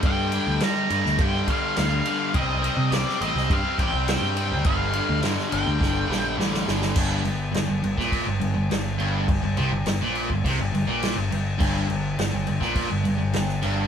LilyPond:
<<
  \new Staff \with { instrumentName = "Lead electric guitar" } { \time 4/4 \key g \minor \tempo 4 = 104 g''4 bes''4 g''8 f''8 f''4 | ees''4 d''8 ees''8 f''8 g''8 g''4 | f''4 r8 g''4. r4 | r1 |
r1 | r1 | }
  \new Staff \with { instrumentName = "Distorted electric guitar" } { \clef bass \time 4/4 \key g \minor <g, d g>8 <g, d g>8 <g, d g>8 <g, d g>8 <g, d g>8 <g, d g>8 <g, d g>8 <g, d g>8 | <c g c'>8 <c g c'>8 <c g c'>8 <c g c'>8 <c g c'>8 <c g c'>8 <c g c'>8 <c g c'>8 | <g, d g>8 <g, d g>8 <g, d g>8 <g, d g>8 <g, d g>8 <g, d g>8 <g, d g>8 <g, d g>8 | g,8 g,8 g,16 g,16 g,16 bes,8 g,16 g,16 g,16 g,8 g,8 |
g,16 g,16 c16 g,16 g,16 bes,8 g,16 c16 g,16 g,16 bes,8 g,16 g,8 | g,8 g,8 g,16 g,16 g,16 bes,8 g,16 g,16 g,16 g,8 g,8 | }
  \new Staff \with { instrumentName = "Picked electric bass" } { \clef bass \time 4/4 \key g \minor g,8. d,16 g16 r16 g,16 d,16 g,8 r8 d,8 r8 | c,8. c16 c,16 r16 a,,16 c,16 g,16 r16 a,,16 c,8 g,8 d,16 | g,,8. d,16 g,16 r16 g,,16 d,16 g,,8 bes,,8 a,,8 g,,8 | g,,8 g,,8 g,,16 g,,16 g,,16 bes,,8 g,,16 g,,16 g,,16 g,,8 g,,8 |
g,,16 g,,16 c,16 g,,16 g,,16 bes,,8 g,,16 c,16 g,,16 g,,16 bes,,8 g,,16 g,,8 | g,,8 g,,8 g,,16 g,,16 g,,16 bes,,8 g,,16 g,,16 g,,16 g,,8 g,,8 | }
  \new DrumStaff \with { instrumentName = "Drums" } \drummode { \time 4/4 <bd cymr>8 cymr8 <cymr sn>8 cymr16 sn16 <bd cymr>8 <bd cymr>8 <cymr sn>8 cymr8 | <bd cymr>8 cymr8 <cymr sn>16 sn16 cymr16 sn16 <bd cymr>8 <bd cymr>8 <cymr sn>8 cymr8 | <bd cymr>8 cymr8 <cymr sn>16 sn16 cymr8 <bd sn>8 sn8 sn16 sn16 sn16 sn16 | <cymc bd>8 cymc8 <cymc sn>8 cymc16 <bd sn>16 <cymc bd>8 cymc8 <cymc sn>8 cymc8 |
<cymc bd>8 cymc8 <cymc sn>8 cymc16 bd16 <cymc bd>8 cymc8 <cymc sn>8 cymc8 | <cymc bd>8 cymc8 <cymc sn>8 cymc16 <bd sn>16 <cymc bd>8 cymc8 <cymc sn>16 sn16 cymc8 | }
>>